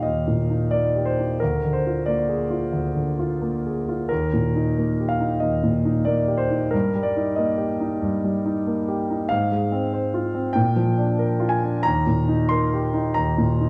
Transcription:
Already playing: D#2 A#2 A#3 D#4 G4 A#4 F5
0.03 D#2 D#5
0.27 A#2
0.50 D#4
0.71 A#3 D5
0.96 G4
1.05 C5
1.19 D#4
1.40 D2 A#4
1.64 D3
1.73 C5
1.87 F4
2.06 A#3 D5
2.29 G#4
2.50 F4
2.72 D2
2.95 D3
3.19 F4
3.42 A#3
3.66 G#4
3.89 F4
4.09 D#2 A#4
4.33 A#2
4.56 D#4
4.78 A#3
5.00 G4
5.09 F5
5.21 D#4
5.40 D#2 D#5
5.63 A#2
5.85 D#4
6.05 A#3 D5
6.28 G4
6.37 C5
6.51 D#4
6.71 G2 A#4
6.95 G3
7.03 D5
7.16 D#4
7.36 A#3 D#5
7.58 G4
7.80 D#4
8.02 G2
8.24 G3
8.46 D#4
8.67 A#3
8.88 G4
9.10 D#4
9.29 G#2 F5
9.52 G#3
9.72 C4
9.93 C5
10.14 F4
10.35 C4
10.53 A#2 G5
10.76 F3
10.98 D4
11.19 A#4
11.40 F4
11.49 G#5
11.63 D4
11.83 D#2 A#5
12.07 A#2
12.28 D#4
12.49 A#4 C6
12.74 G4
12.94 D#4
13.14 D#2 A#5
13.38 A#2
13.61 D#4

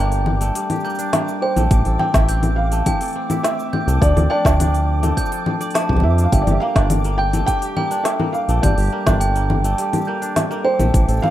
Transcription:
Already playing: G1 G3 A#3 D4 G4 A4 D5 D6
0.00 G5
0.12 open hi-hat, shaker
0.26 low conga
0.41 A3, open hi-hat, shaker
0.55 G3, open hi-hat, shaker
0.70 G4, open hi-hat, low conga, shaker
0.75 shaker
0.80 shaker
0.84 A#3 G6, shaker
0.90 shaker
0.95 D4, open hi-hat, shaker
0.99 shaker
1.13 A#3, snare, open hi-hat, low conga, shaker
1.28 shaker
1.42 C5 G5
1.56 A#1 A3, open hi-hat, low conga, shaker
1.71 A1 E3, kick, open hi-hat, shaker
1.85 A1 A3 A4, open hi-hat
1.99 C4 G5, low conga
2.14 A1 E4, kick, snare, open hi-hat, shaker
2.29 C4 G6, open hi-hat, shaker
2.43 open hi-hat, low conga, shaker
2.56 F5
2.72 A3, open hi-hat, shaker
2.86 E3 G5, kick, open hi-hat, low conga
3.01 A4, open hi-hat, shaker
3.03 open hi-hat
3.06 open hi-hat
3.08 open hi-hat
3.10 open hi-hat
3.13 C4, open hi-hat
3.30 E4, open hi-hat, low conga, shaker
3.43 C4 E5, snare, open hi-hat, shaker
3.59 shaker
3.73 G6, low conga
3.87 C2 A3, open hi-hat, shaker
4.01 D2 F3 D5, kick, open hi-hat, shaker
4.16 D2 A4, open hi-hat, low conga, shaker
4.30 D4 D5 G5
4.45 D2 F4 A4, kick, snare, open hi-hat, shaker
4.59 D4, open hi-hat, low conga, shaker
4.74 open hi-hat, shaker
5.03 A3, open hi-hat, low conga, shaker
5.17 F3 G6, kick, open hi-hat, shaker
5.26 shaker
5.32 A4, open hi-hat
5.46 F3, low conga
5.61 D5, open hi-hat, shaker
5.71 A5, open hi-hat
5.75 F3, snare, open hi-hat, shaker
5.89 C2, kick, low conga
5.93 low conga
5.97 low conga
6.00 F2 E5, low conga
6.18 F4, open hi-hat, shaker
6.24 F5
6.32 G1 G3 E5 G5, kick, open hi-hat, shaker
6.42 D5
6.47 G1 G4, open hi-hat, low conga, shaker
6.51 E5
6.60 A#3 F5
6.76 G1 D4, kick, snare, open hi-hat
6.90 open hi-hat, low conga, shaker
7.04 A#3, open hi-hat, shaker
7.18 G5 G6
7.33 A3, open hi-hat, low conga, shaker
7.46 G3 G5, kick, open hi-hat, shaker
7.62 G4, open hi-hat, shaker
7.77 A#3 G5, low conga
7.91 D4, open hi-hat, shaker
8.04 E5, snare, open hi-hat, shaker
8.20 A#3, low conga
8.33 F5, shaker
8.48 A#1 A3, open hi-hat, shaker
8.62 G1 G3 D5 G6, kick, open hi-hat, low conga, shaker
8.77 G1 G4, open hi-hat, shaker
8.80 open hi-hat
8.82 open hi-hat
8.85 open hi-hat
8.87 open hi-hat
8.92 A#3
9.06 G1 D4, kick, snare, open hi-hat, low conga, shaker
9.21 G5, open hi-hat, shaker
9.36 A#3, open hi-hat, shaker
9.50 low conga
9.64 A3, open hi-hat, shaker
9.78 G3, open hi-hat, shaker
9.93 G4, open hi-hat, low conga, shaker
9.97 shaker
10.01 shaker
10.05 A#3 G6, shaker
10.22 D4, open hi-hat, shaker
10.36 snare, open hi-hat, low conga, shaker
10.51 A#3, shaker
10.64 C5 G5
10.79 A#1 A3, open hi-hat, low conga, shaker
10.94 A1 E3, kick, open hi-hat, shaker
11.08 A1 C4 A4, open hi-hat, shaker
11.13 A3, shaker
11.17 shaker
11.20 C4 F5, low conga, shaker
11.24 shaker
11.27 shaker

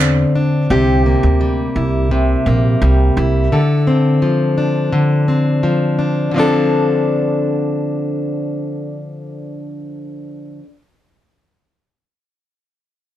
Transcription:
Already playing: E2 D3 C4 D4 A4
0.00 clap
0.35 D4
0.70 C2 C3 G4
1.06 A#3
1.23 D2
1.41 G3
1.76 C2 E4
2.11 C3
2.46 A#1 A#3
2.82 C2 G3
3.17 C2 E4
3.52 D3 A4
3.87 C4
4.22 F3
4.58 D4
4.93 D3
5.28 C4
5.63 F3
5.99 D4
6.31 D3 F3
6.36 C4 D4 A4

